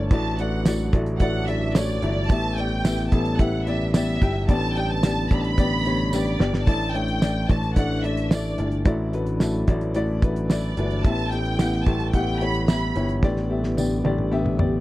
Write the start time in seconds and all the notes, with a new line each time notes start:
Already playing: E3 A3 D4 E4 C#5 D5 E5
0.10 A1 A2 F#3 A3 D4 E4 F#4 D5 A5, kick, closed hi-hat
0.39 A3 E4 F#4 D5 F#5, closed hi-hat
0.65 A3 E4 F#4 D5, snare, closed hi-hat, tambourine
0.79 closed hi-hat
0.93 A1 A3 E4 F#4 D5, kick, closed hi-hat
1.06 closed hi-hat
1.20 A3 E4 F#4 D5 F#5, kick, closed hi-hat
1.48 A3 E4 F#4 D5 E5, closed hi-hat
1.75 A3 E4 F#4 C#5 D5, snare, closed hi-hat, tambourine
2.02 G1 A3 E4 F#4 E5, closed hi-hat
2.30 A1 A2 G3 B3 E4 G4 E5 A5, kick, closed hi-hat
2.57 B3 E4 G4 D5 G5, closed hi-hat
2.85 B3 E4 G4 E5, snare, closed hi-hat, tambourine
2.98 snare, closed hi-hat
3.11 A1 B3 E4 G4 A4 A5, kick, closed hi-hat
3.25 closed hi-hat
3.39 B3 E4 G4 E5 F#5, kick, closed hi-hat
3.67 B3 E4 G4 D5 E5, closed hi-hat
3.94 B3 E4 G4 D5 E5, snare, closed hi-hat, tambourine
4.21 G1 B3 E4 G4 G5, kick, closed hi-hat
4.48 A1 A2 D3 B3 D4 G4 D5 A5, kick, closed hi-hat
4.76 B3 D4 G4 D5 G5, closed hi-hat
4.91 A5
5.03 B3 D4 G4 D5, snare, closed hi-hat, tambourine
5.31 A1 B3 D4 G4 D5 B5, kick, closed hi-hat
5.39 A5
5.44 B5, closed hi-hat
5.58 B3 D4 G4 D5, kick, closed hi-hat
5.85 B3 D4 G4 C#5, closed hi-hat
6.13 B3 D4 G4 D5, snare, tambourine
6.39 G1 B3 D4 G4 D5, snare
6.54 snare
6.66 A1 A2 E3 A3 D4 E4 D5 A5, kick, closed hi-hat
6.81 closed hi-hat
6.94 A3 D4 E4 C#5 G5, closed hi-hat
7.08 closed hi-hat
7.21 A3 D4 E4 D5, snare, tambourine
7.49 A1 A3 D4 E4 D5 A5, kick, closed hi-hat
7.63 closed hi-hat
7.76 A3 D4 E4 D5 F#5, kick, closed hi-hat
8.03 A3 D4 E4 D5 E5, closed hi-hat
8.17 closed hi-hat
8.31 A3 D4 E4 D5, snare, tambourine
8.58 G1 A3 D4 E4 D5, closed hi-hat
8.72 closed hi-hat
8.85 A1 A2 E3 F#3 A3 E4 F#4 D5, kick, closed hi-hat
9.13 A3 E4 F#4 B4, closed hi-hat
9.26 closed hi-hat
9.40 A3 E4 F#4 A4, snare, tambourine
9.54 closed hi-hat
9.67 A1 A3 E4 F#4 D5, kick, closed hi-hat
9.81 closed hi-hat
9.95 A3 E4 F#4 D5, closed hi-hat
10.22 A3 E4 F#4 B4, kick, closed hi-hat
10.36 closed hi-hat
10.50 A3 E4 F#4 D5, snare, tambourine
10.64 closed hi-hat
10.77 G1 A3 E4 F#4 B4, closed hi-hat
10.91 closed hi-hat
11.03 A1 A2 G3 B3 E4 G4 E5 A5, kick, closed hi-hat
11.31 B3 E4 G4 A4 G5, closed hi-hat
11.45 closed hi-hat
11.59 B3 E4 G4 F#5, snare, tambourine
11.73 snare
11.85 A1 B3 E4 G4 G5 A5, kick, closed hi-hat
12.00 closed hi-hat
12.12 B3 E4 G4 F#5 G5, kick, closed hi-hat
12.40 B3 E4 G4 C#5 B5, closed hi-hat
12.55 closed hi-hat
12.67 B3 E4 G4 E5 B5, snare, tambourine
12.82 closed hi-hat
12.95 G1 B3 E4 G4 C#5, closed hi-hat
13.09 closed hi-hat
13.23 A1 A2 D3 G3 B3 D4 G4 D5, kick, snare
13.37 snare
13.50 B3 D4 G4 E5
13.64 snare
13.77 B3 D4 G4 D5, high tom, tambourine
14.04 A1 B3 D4 G4 D5, high tom
14.18 mid tom
14.32 B3 D4 G4 E5
14.46 mid tom
14.58 B3 D4 G4 D5, mid tom